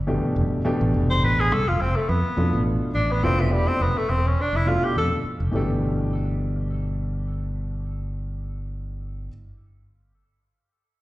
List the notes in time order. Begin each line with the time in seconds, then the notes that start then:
Already playing: G1
0.07 B2 E3 A3 D4 G4
0.23 muted fingered electric bass stroke
0.36 F#1
0.65 B2 E3 A3 D4 G4, muted fingered electric bass stroke
0.81 A1
0.94 F1
1.10 C5
1.22 A1 B4
1.40 G#4
1.52 C2 A4
1.67 F1 F4
1.80 F1 C4
1.96 A3
2.09 F2 B3
2.37 F2 B2 A3 D4 E4 F4
2.53 A1
2.94 A1 D4
3.11 B3
3.23 F1 B2 A3 C4 D4 E4 F4
3.40 E3
3.52 E1 G3
3.68 C4
3.81 F1 B3
3.98 A3
4.09 E1 C4
4.27 C#4
4.41 D4
4.53 F1 E4
4.66 B2 A3 D4 E4 F4
4.84 G4
4.96 F2 A4
5.24 muted fingered electric bass stroke
5.40 F1
5.51 G1 B2 E3 A3 D4
5.56 G4